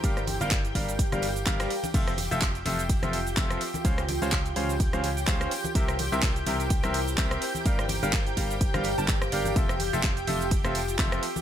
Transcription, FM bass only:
X:1
M:4/4
L:1/16
Q:"Swing 16ths" 1/4=126
K:F
V:1 name="FM bass" clef=bass
G,,,3 G,,,3 G,,,3 G,,,3 G,,,2 z2 | F,,,3 F,,,3 F,,,3 F,,,3 F,,,2 z2 | _D,,3 D,,3 D,,3 D,,3 D,,2 z2 | C,,3 C,,3 C,,3 C,,3 C,,2 z2 |
G,,,3 G,,,3 G,,,3 G,,,2 G,,,3 G,,,2 | F,,,3 F,,,3 F,,,3 F,,,3 F,,,2 z2 |]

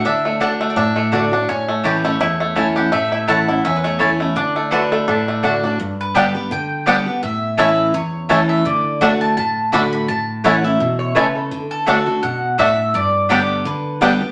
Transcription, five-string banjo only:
X:1
M:4/4
L:1/8
Q:"Swing" 1/4=168
K:D
V:1 name="Five-string banjo"
[A,D] A, D A, D A, D D | C A, G A, E A, C G | A, E A, E C A, C A, | D A, D A, D A, D D |
z2 [G,B,D] z3 [G,B,D] z | z2 [A,CE] z3 [A,CE] z | z2 [A,D] z3 [A,D] z | z2 [A,CE] z3 [A,CE] z |
z2 [A,D] z3 [A,D] z | z2 [G,B,D] z3 [G,B,D] z |]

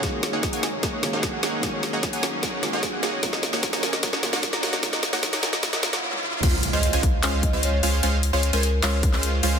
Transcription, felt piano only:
X:1
M:4/4
L:1/8
Q:1/4=150
K:Db
V:1 name="Felt piano"
[E,A,B,DG]4- [E,A,B,DG] [E,A,B,DG]3 | [E,A,B,DG]4- [E,A,B,DG] [E,A,B,DG]3 | [E,G,B,DF]4- [E,G,B,DF] [E,G,B,DF]3 | [E,G,B,DF]4- [E,G,B,DF] [E,G,B,DF] z2 |
z8 | z8 |]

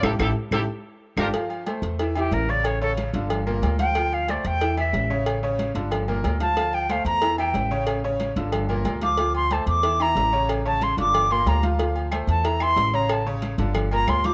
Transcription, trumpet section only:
X:1
M:4/4
L:1/8
Q:1/4=184
K:Aphr
V:1 name="Trumpet section"
[EGA] [EGA] z [EGA] z3 [FGB] | z8 | z8 | z8 |
z8 | z8 | z8 | z8 |
z8 | z8 | z8 |]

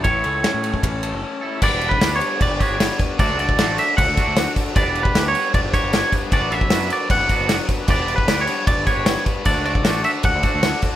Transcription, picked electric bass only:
X:1
M:4/4
L:1/16
Q:1/4=153
K:Glyd
V:1 name="Picked electric bass" clef=bass
A,,,2 C,,2 z A,,2 z A,,,3 F,,, z4 | G,,, E,,,3 D,,2 z2 E,,, G,,, z G,,,2 z3 | D,, C,,3 A,,,2 z2 C,, D,, z D,,2 z3 | G,,, E,,,3 D,,2 z2 E,,, G,,, z G,,,2 z3 |
F,,, A,,,3 F,,2 z2 A,,, F,,, z F,,,2 z3 | G,,, E,,,3 D,,2 z2 E,,, G,,, z G,,,2 z3 | D,, C,,3 A,,,2 z2 C,, D,, z D,,2 z3 |]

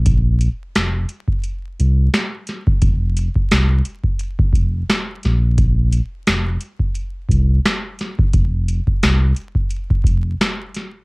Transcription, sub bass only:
X:1
M:4/4
L:1/16
Q:"Swing 16ths" 1/4=87
K:Bbdor
V:1 name="Sub bass" clef=bass
B,,,3 z F,,,2 z4 C,,2 z4 | F,,,3 z C,,2 z4 F,,,2 z2 B,,,2- | B,,,3 z F,,,2 z4 C,,2 z4 | F,,,3 z C,,2 z4 F,,,2 z4 |]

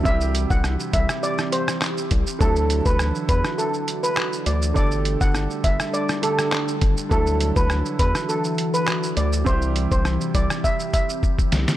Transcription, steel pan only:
X:1
M:4/4
L:1/16
Q:1/4=102
K:Dmix
V:1 name="Steel pan"
e2 z f z2 e z d z c z4 z | A2 z B2 z B2 A z2 B z2 d z | d2 z f z2 e z d z A z4 z | A2 z B2 z B2 A z2 B z2 d z |
c2 z c z2 d z e z e z4 z |]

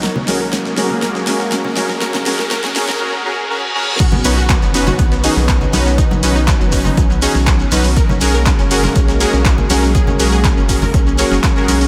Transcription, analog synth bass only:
X:1
M:4/4
L:1/16
Q:1/4=121
K:B
V:1 name="Analog synth bass" clef=bass
z2 B,,,2 z F,,,2 z B,,,2 z B,,,2 z B,,,2 | z2 B,,,2 z F,,,2 z8 z | z2 B,,,2 z F,,,2 z B,,,2 z B,,,2 z B,,,2 | z2 B,,,2 z F,,,2 z B,,,2 z B,,,2 z B,,,2 |
z2 B,,,2 z F,,,2 z B,,,2 z B,,,2 z B,,,2 | z2 B,,,2 z F,,,2 z B,,,2 z F,,, z2 B,,,2 |]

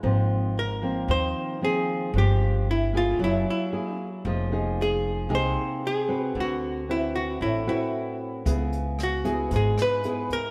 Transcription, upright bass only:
X:1
M:4/4
L:1/8
Q:1/4=114
K:Fm
V:1 name="Upright bass" clef=bass
A,,,4 E,, z3 | G,,,4 _G,,, z3 | F,,,4 C,, z3 | =D,,4 =A,,, z3 |
D,,4 A,,, z3 |]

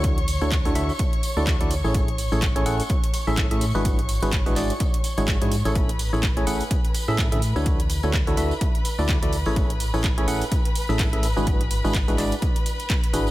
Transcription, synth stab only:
X:1
M:4/4
L:1/16
Q:"Swing 16ths" 1/4=126
K:A
V:1 name="Synth stab"
[D,DEFAc] z2 [D,DEFAc] z [D,DEFAc] [D,DEFAe] z4 [D,DEFAd]2 [D,DEFAd] z [A,,CEGAc]- | [A,,CEGAc] z2 [A,,CEGAc] z [A,,CEGAc] [A,,CEGAf] z4 [A,,CEGAe]2 [A,,CEGAe] z [G,DEFGB]- | [G,DEFGB] z2 [G,DEFGB] z [G,DEFGB] [G,DEFGd] z4 [G,DEFGc]2 [G,DEFGc] z [A,,CEGAc]- | [A,,CEGAc] z2 [A,,CEGAc] z [A,,CEGAc] [A,,CEGAf] z4 [A,,CEGAe]2 [D,CEGAe] z [D,DEFAc]- |
[D,DEFAc] z2 [D,DEFAc] z [D,DEFAc] [D,DEFAe] z4 [D,DEFAd]2 [D,DEFAd] z [A,,CEGAc]- | [A,,CEGAc] z2 [A,,CEGAc] z [A,,CEGAc] [A,,CEGAf] z4 [A,,CEGAe]2 [A,,CEGAe] z [G,DEFGB]- | [G,DEFGB] z2 [G,DEFGB] z [G,DEFGB] [G,DEFGd] z6 z [DEFGB] z |]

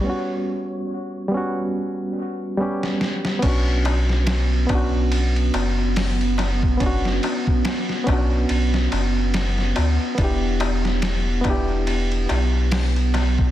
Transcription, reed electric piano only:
X:1
M:4/4
L:1/8
Q:"Swing 16ths" 1/4=71
K:Bm
V:1 name="Reed electric piano"
[G,B,CF]3 [G,B,CF]3 [G,B,CG]2 | [B,CDF]3 [B,CDF]4- [B,CDF] | [B,CDF]3 [B,CDF]4- [B,CDF] | [B,DEG]3 [B,DEG]4- [B,DEG] |]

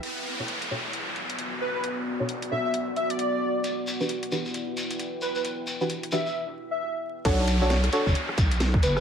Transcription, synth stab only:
X:1
M:4/4
L:1/16
Q:"Swing 16ths" 1/4=133
K:Bm
V:1 name="Synth stab"
z3 [B,,DFAc] z2 [B,,DFAc] z8 z | z3 [B,,DFAc] z2 [B,,DFAc] z8 z | z3 [E,DFGB] z2 [E,DFGB] z8 z | z3 [E,DFGB] z2 [E,DFGB] z8 z |
[DFAc]3 [DFAc] z2 [DFAc] z8 z |]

